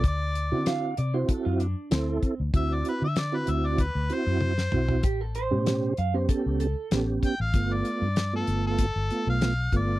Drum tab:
HH |x-x-x-x-x-x-x-x-|x-x-x-x-x-x-----|x-x-x-x-x-x-x-x-|x-x-x-x-x-x-x-x-|
SD |----o-------o---|----o--------o--|----o-------o---|----o-------o---|
T1 |----------------|------------o---|----------------|----------------|
T2 |----------------|--------------o-|----------------|----------------|
FT |----------------|---------------o|----------------|----------------|
BD |o-------o-----o-|o-------o-------|o-------o-----o-|o-------o-----o-|